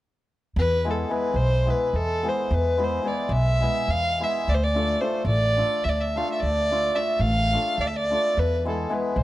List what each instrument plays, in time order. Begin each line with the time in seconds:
0.56 upright bass E2, fiddle B4
0.85 hammered dulcimer G#3 B3 E4 G#4
0.90 fiddle A4
1.09 hammered dulcimer G#3 B3 E4 G#4, fiddle B4
1.34 upright bass B1, fiddle C5
1.65 hammered dulcimer G#3 B3 E4 G#4
1.70 fiddle B4
1.93 upright bass E2, fiddle A4
2.23 hammered dulcimer G#3 B3 E4 G#4
2.28 fiddle C5
2.51 upright bass E2, fiddle B4
2.77 hammered dulcimer G#3 B3 E4 G#4
2.84 fiddle C5
3.03 hammered dulcimer G#3 B3 E4 G#4
3.07 fiddle D5
3.29 upright bass B1, fiddle E5
3.61 hammered dulcimer G#3 B3 E4 G#4
3.88 upright bass E2, fiddle F5
4.20 hammered dulcimer G#3 B3 E4 G#4, fiddle E5
4.48 upright bass D2, fiddle D5
4.54 fiddle C5
4.64 fiddle D5
4.74 hammered dulcimer A3 D4 F4 A4
5.01 hammered dulcimer A3 D4 F4 A4, fiddle C5
5.25 upright bass A1, fiddle D5
5.56 hammered dulcimer A3 D4 F4 A4
5.84 upright bass D2, fiddle E5
5.89 fiddle D5
6.01 fiddle E5
6.16 hammered dulcimer A3 D4 F4 A4, fiddle F5
6.32 fiddle E5
6.41 upright bass D2, fiddle D5
6.71 hammered dulcimer A3 D4 F4 A4
6.95 hammered dulcimer A3 D4 F4 A4, fiddle E5
7.19 upright bass A1, fiddle F5
7.53 hammered dulcimer A3 D4 F4 A4
7.78 upright bass D2, fiddle D5
7.87 fiddle E5
7.97 fiddle D5
8.10 hammered dulcimer A3 D4 F4 A4
8.37 upright bass E2, fiddle B4
8.65 hammered dulcimer G#3 B3 E4 G#4, fiddle A4
8.90 hammered dulcimer G#3 B3 E4 G#4, fiddle B4
9.16 upright bass B1, fiddle C5